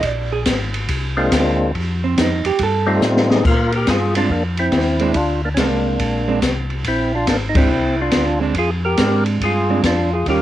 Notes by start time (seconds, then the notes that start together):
0.03 A#1, kick, ride
0.07 D5
0.32 G#4
0.46 G#1, kick, snare, hi-hat pedal, ride
0.74 ride
0.89 C2, kick, ride
1.17 G#3 A#3 C4 D4 F4
1.31 D2, kick, snare, hi-hat pedal, ride
1.74 F2, kick, ride
2.04 C4
2.17 F2 D#4, kick, snare, hi-hat pedal, ride
2.44 F2 G4, ride
2.58 G2, kick, ride
2.63 A4
2.86 G3 A3 C4 D#4 F4
3.02 A2 C4 F4, snare, hi-hat pedal
3.17 snare
3.30 D#4 G#4, snare
3.44 A#2 F4 A#4, kick, crash
3.72 A#4, ride
3.76 G4
3.87 G2 F4 G#4, kick, snare, hi-hat pedal, ride
4.15 G#3 C4 D4 F4, ride
4.29 F2 A#3 D4, kick
4.57 C4 E4, ride
4.72 D#2, kick, snare, hi-hat pedal, ride
4.99 G#3 C4 D4, ride
5.14 D2 D4 F4, kick, ride
5.45 A#3 D4
5.54 C2 C#4, kick, snare, hi-hat pedal, ride
5.59 G#3 A#3 C4 D4
6.00 A#1, kick, ride
6.28 G#3 C4 D4
6.42 C2, kick, snare, hi-hat pedal, ride
6.70 ride
6.85 A#1 C4 E4, kick, ride
7.15 D4 F4
7.27 G#1 A#3 D4, kick, snare, hi-hat pedal, ride
7.49 D#4
7.55 G#3 C4 D4 E4, kick, ride
7.69 C2
8.02 D4 F4
8.12 D2, kick, snare, hi-hat pedal, ride
8.40 G#3 C4 D4
8.54 F2, kick, ride
8.58 F4 G#4
8.85 G4 A#4
8.97 G#2 G#3 C4 D4, kick, snare, hi-hat pedal, ride
9.26 ride
9.40 G2 G#4, kick, ride
9.45 F4
9.70 G#3 C4 D4
9.83 F2 D4 F4, kick, snare, hi-hat pedal, ride
10.13 F4 G#4
10.25 D#2 D#3 G3 C#4 F4 A#4, kick, ride
10.30 G4